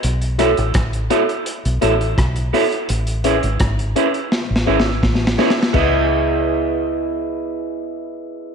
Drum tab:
CC |------------------------------------------------|------------------------------------------------|x-----------------------------------------------|
HH |x--x--x--x--x--x--x--x--x--x--x--x--x--x--o--x--|x--x--x--x--x--x--x--x--------------------------|------------------------------------------------|
SD |------r-----r-----------------------r-----------|------------r-----------o---o---o---o-o-o-o-o-o-|------------------------------------------------|
BD |------------o-----------------------o-----------|------------o-----------------------o-----------|o-----------------------------------------------|